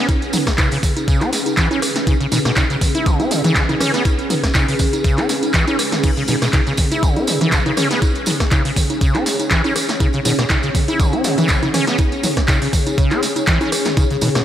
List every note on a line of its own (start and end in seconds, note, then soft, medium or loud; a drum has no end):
0.00 14.45 C#4 medium
0.00 14.45 G#4 medium
0.00 7.22 B4 medium
0.09 kick loud
0.09 closed hi-hat medium
0.09 tambourine soft
0.09 high conga medium
0.22 closed hi-hat soft
0.22 tambourine soft
0.33 0.38 F#3 medium
0.33 open hi-hat loud
0.33 mid tom medium
0.33 tambourine medium
0.33 high conga soft
0.47 kick medium
0.47 cross-stick medium
0.47 snare medium
0.47 closed hi-hat medium
0.47 tambourine soft
0.58 0.69 C#3 medium
0.58 kick loud
0.58 clap loud
0.58 closed hi-hat medium
0.58 tambourine medium
0.58 high conga medium
0.71 0.78 C#3 medium
0.71 open hi-hat medium
0.71 tambourine soft
0.83 kick medium
0.83 open hi-hat loud
0.83 mid tom medium
0.83 tambourine medium
0.97 closed hi-hat soft
0.97 tambourine soft
0.97 high conga soft
1.08 1.23 C#3 medium
1.08 kick loud
1.08 closed hi-hat medium
1.08 tambourine medium
1.21 1.31 C#4 medium
1.21 clap soft
1.21 closed hi-hat soft
1.21 tambourine soft
1.21 high conga medium
1.33 snare medium
1.33 open hi-hat loud
1.33 tambourine medium
1.46 closed hi-hat medium
1.46 tambourine soft
1.46 high conga soft
1.57 1.69 E3 loud
1.57 kick loud
1.57 clap loud
1.57 closed hi-hat medium
1.57 tambourine soft
1.71 1.80 C#4 medium
1.71 closed hi-hat soft
1.71 tambourine soft
1.71 high conga medium
1.82 cross-stick medium
1.82 open hi-hat loud
1.82 tambourine medium
1.96 snare medium
1.96 closed hi-hat medium
1.96 tambourine soft
2.07 2.14 C#3 medium
2.07 kick loud
2.07 closed hi-hat medium
2.07 tambourine soft
2.07 high conga medium
2.20 2.27 C#3 medium
2.20 closed hi-hat soft
2.20 tambourine soft
2.32 2.39 B2 medium
2.32 open hi-hat loud
2.32 mid tom medium
2.32 tambourine medium
2.32 high conga soft
2.45 2.52 B2 medium
2.45 cross-stick medium
2.45 snare medium
2.45 closed hi-hat medium
2.45 tambourine soft
2.56 2.64 C#3 medium
2.56 kick loud
2.56 clap loud
2.56 closed hi-hat medium
2.56 tambourine medium
2.56 high conga medium
2.70 2.76 C#3 medium
2.70 closed hi-hat soft
2.70 tambourine soft
2.81 kick medium
2.81 open hi-hat loud
2.81 mid tom medium
2.81 tambourine medium
2.95 3.08 E4 medium
2.95 closed hi-hat medium
2.95 tambourine soft
2.95 high conga soft
3.06 3.21 C#3 medium
3.06 kick loud
3.06 closed hi-hat medium
3.06 tambourine soft
3.20 3.32 C#4 loud
3.20 closed hi-hat soft
3.20 tambourine soft
3.20 high conga medium
3.31 3.42 C#3 loud
3.31 snare medium
3.31 open hi-hat loud
3.31 tambourine medium
3.44 3.57 E3 loud
3.44 closed hi-hat medium
3.44 mid tom medium
3.44 tambourine soft
3.44 high conga soft
3.56 3.63 C#3 medium
3.56 kick loud
3.56 clap loud
3.56 closed hi-hat medium
3.56 tambourine soft
3.69 3.75 C#3 medium
3.69 closed hi-hat soft
3.69 tambourine soft
3.69 high conga medium
3.80 3.92 C#4 loud
3.80 cross-stick medium
3.80 open hi-hat loud
3.80 mid tom medium
3.80 tambourine medium
3.94 4.03 B3 medium
3.94 snare medium
3.94 closed hi-hat medium
3.94 tambourine soft
4.05 kick loud
4.05 closed hi-hat medium
4.05 tambourine medium
4.05 high conga medium
4.18 closed hi-hat soft
4.18 tambourine soft
4.30 4.35 F#3 medium
4.30 open hi-hat loud
4.30 mid tom medium
4.30 tambourine medium
4.30 high conga soft
4.44 kick medium
4.44 cross-stick medium
4.44 snare medium
4.44 closed hi-hat medium
4.44 tambourine soft
4.55 4.66 C#3 medium
4.55 kick loud
4.55 clap loud
4.55 closed hi-hat medium
4.55 tambourine soft
4.55 high conga medium
4.68 4.75 C#3 medium
4.68 open hi-hat medium
4.68 tambourine soft
4.79 kick medium
4.79 open hi-hat loud
4.79 mid tom medium
4.79 tambourine medium
4.93 closed hi-hat medium
4.93 tambourine soft
4.93 high conga soft
5.04 5.19 C#3 medium
5.04 kick loud
5.04 closed hi-hat medium
5.04 tambourine medium
5.18 5.27 C#4 medium
5.18 clap soft
5.18 closed hi-hat soft
5.18 tambourine soft
5.18 high conga medium
5.29 snare medium
5.29 open hi-hat loud
5.29 tambourine medium
5.43 closed hi-hat medium
5.43 tambourine soft
5.43 high conga soft
5.54 5.65 E3 loud
5.54 kick loud
5.54 clap loud
5.54 closed hi-hat medium
5.54 tambourine medium
5.67 5.77 C#4 medium
5.67 closed hi-hat soft
5.67 tambourine soft
5.67 high conga medium
5.79 cross-stick medium
5.79 open hi-hat loud
5.79 tambourine medium
5.92 snare medium
5.92 closed hi-hat medium
5.92 mid tom medium
5.92 tambourine soft
6.03 6.11 C#3 medium
6.03 kick loud
6.03 closed hi-hat medium
6.03 crash medium
6.03 tambourine medium
6.03 high conga medium
6.17 6.23 C#3 medium
6.17 closed hi-hat soft
6.17 tambourine soft
6.28 6.36 B2 medium
6.28 open hi-hat loud
6.28 mid tom medium
6.28 tambourine medium
6.28 high conga soft
6.42 6.48 B2 medium
6.42 cross-stick medium
6.42 snare medium
6.42 closed hi-hat medium
6.42 tambourine soft
6.53 6.61 C#3 medium
6.53 kick loud
6.53 clap loud
6.53 closed hi-hat medium
6.53 tambourine medium
6.53 high conga medium
6.67 6.73 C#3 medium
6.67 closed hi-hat soft
6.67 tambourine soft
6.77 kick medium
6.77 open hi-hat loud
6.77 mid tom medium
6.77 tambourine loud
6.92 7.04 E4 medium
6.92 closed hi-hat medium
6.92 tambourine soft
6.92 high conga soft
7.03 7.18 C#3 medium
7.03 kick loud
7.03 closed hi-hat medium
7.03 tambourine medium
7.16 7.29 C#4 loud
7.16 14.45 C#5 medium
7.16 closed hi-hat soft
7.16 tambourine soft
7.16 high conga medium
7.27 7.39 C#3 loud
7.27 snare medium
7.27 open hi-hat loud
7.27 tambourine medium
7.41 7.54 E3 loud
7.41 closed hi-hat medium
7.41 mid tom medium
7.41 tambourine soft
7.41 high conga soft
7.52 7.60 C#3 medium
7.52 kick loud
7.52 clap loud
7.52 closed hi-hat medium
7.52 tambourine medium
7.66 7.72 C#3 medium
7.66 closed hi-hat soft
7.66 tambourine soft
7.66 high conga medium
7.77 7.88 C#4 loud
7.77 cross-stick medium
7.77 open hi-hat loud
7.77 mid tom loud
7.77 tambourine medium
7.91 8.00 B3 medium
7.91 snare medium
7.91 closed hi-hat medium
7.91 tambourine soft
8.02 kick loud
8.02 closed hi-hat medium
8.02 tambourine soft
8.02 high conga medium
8.15 closed hi-hat soft
8.15 tambourine soft
8.26 8.31 F#3 medium
8.26 open hi-hat loud
8.26 mid tom loud
8.26 tambourine loud
8.26 high conga soft
8.40 kick medium
8.40 cross-stick medium
8.40 snare medium
8.40 closed hi-hat medium
8.40 tambourine soft
8.51 8.63 C#3 medium
8.51 kick loud
8.51 clap loud
8.51 closed hi-hat medium
8.51 tambourine medium
8.51 high conga medium
8.65 8.71 C#3 medium
8.65 open hi-hat medium
8.65 tambourine soft
8.76 kick medium
8.76 open hi-hat loud
8.76 mid tom medium
8.76 tambourine medium
8.90 closed hi-hat medium
8.90 tambourine soft
8.90 high conga soft
9.01 9.16 C#3 medium
9.01 kick loud
9.01 closed hi-hat medium
9.01 tambourine medium
9.14 9.24 C#4 medium
9.14 clap soft
9.14 closed hi-hat soft
9.14 tambourine soft
9.14 high conga medium
9.26 snare medium
9.26 open hi-hat loud
9.26 tambourine medium
9.40 closed hi-hat medium
9.40 tambourine soft
9.40 high conga soft
9.51 9.62 E3 loud
9.51 kick loud
9.51 clap loud
9.51 closed hi-hat medium
9.51 tambourine medium
9.64 9.74 C#4 medium
9.64 closed hi-hat soft
9.64 tambourine soft
9.64 high conga medium
9.76 cross-stick medium
9.76 open hi-hat loud
9.76 tambourine loud
9.89 snare medium
9.89 closed hi-hat medium
9.89 tambourine soft
10.00 10.08 C#3 medium
10.00 kick loud
10.00 closed hi-hat medium
10.00 tambourine soft
10.00 high conga medium
10.13 10.20 C#3 medium
10.13 closed hi-hat soft
10.13 tambourine soft
10.25 10.33 B2 medium
10.25 open hi-hat loud
10.25 mid tom loud
10.25 tambourine loud
10.25 high conga soft
10.39 10.45 B2 medium
10.39 cross-stick medium
10.39 snare medium
10.39 closed hi-hat medium
10.39 tambourine soft
10.50 10.57 C#3 medium
10.50 kick loud
10.50 clap loud
10.50 closed hi-hat soft
10.50 tambourine medium
10.50 high conga medium
10.63 10.70 C#3 medium
10.63 closed hi-hat soft
10.63 tambourine soft
10.75 kick medium
10.75 open hi-hat loud
10.75 mid tom loud
10.75 tambourine loud
10.88 11.01 E4 medium
10.88 closed hi-hat medium
10.88 tambourine soft
10.88 high conga soft
11.00 11.15 C#3 medium
11.00 kick loud
11.00 closed hi-hat medium
11.00 tambourine medium
11.13 11.26 C#4 loud
11.13 closed hi-hat soft
11.13 tambourine soft
11.13 high conga medium
11.24 11.35 C#3 loud
11.24 snare medium
11.24 open hi-hat loud
11.24 tambourine medium
11.38 11.51 E3 loud
11.38 closed hi-hat medium
11.38 mid tom loud
11.38 tambourine soft
11.38 high conga soft
11.48 11.57 C#3 medium
11.48 kick loud
11.48 clap loud
11.48 closed hi-hat soft
11.48 tambourine medium
11.63 11.69 C#3 medium
11.63 closed hi-hat soft
11.63 tambourine soft
11.63 high conga medium
11.74 11.85 C#4 loud
11.74 cross-stick medium
11.74 open hi-hat loud
11.74 mid tom loud
11.74 tambourine medium
11.87 11.97 B3 medium
11.87 snare medium
11.87 closed hi-hat medium
11.87 tambourine soft
11.98 kick loud
11.98 closed hi-hat medium
11.98 tambourine medium
11.98 high conga medium
12.12 closed hi-hat soft
12.12 tambourine soft
12.23 12.28 F#3 medium
12.23 open hi-hat loud
12.23 mid tom loud
12.23 tambourine medium
12.23 high conga soft
12.37 kick medium
12.37 cross-stick medium
12.37 snare medium
12.37 closed hi-hat medium
12.37 tambourine soft
12.48 12.59 C#3 medium
12.48 kick loud
12.48 clap loud
12.48 closed hi-hat soft
12.48 tambourine soft
12.48 high conga medium
12.62 12.68 C#3 medium
12.62 open hi-hat medium
12.62 tambourine soft
12.73 kick medium
12.73 open hi-hat loud
12.73 mid tom loud
12.73 tambourine loud
12.87 closed hi-hat medium
12.87 tambourine soft
12.87 high conga soft
12.98 13.13 C#3 medium
12.98 kick loud
12.98 closed hi-hat medium
12.98 tambourine soft
13.11 13.21 C#4 medium
13.11 clap soft
13.11 closed hi-hat soft
13.11 tambourine soft
13.11 high conga medium
13.23 snare medium
13.23 open hi-hat loud
13.23 tambourine loud
13.36 closed hi-hat medium
13.36 tambourine soft
13.36 high conga soft
13.47 13.59 E3 loud
13.47 kick loud
13.47 clap loud
13.47 closed hi-hat medium
13.47 tambourine medium
13.61 13.70 C#4 medium
13.61 closed hi-hat soft
13.61 tambourine soft
13.61 high conga medium
13.72 cross-stick medium
13.72 open hi-hat loud
13.72 tambourine loud
13.85 snare medium
13.85 closed hi-hat medium
13.85 mid tom medium
13.85 tambourine soft
13.97 14.05 C#3 medium
13.97 kick loud
13.97 closed hi-hat soft
13.97 tambourine medium
13.97 high conga medium
14.10 14.17 C#3 medium
14.10 closed hi-hat soft
14.10 tambourine soft
14.21 14.29 B2 medium
14.21 open hi-hat loud
14.21 mid tom medium
14.21 tambourine medium
14.21 high conga soft
14.35 14.42 B2 medium
14.35 cross-stick medium
14.35 snare medium
14.35 closed hi-hat medium
14.35 tambourine soft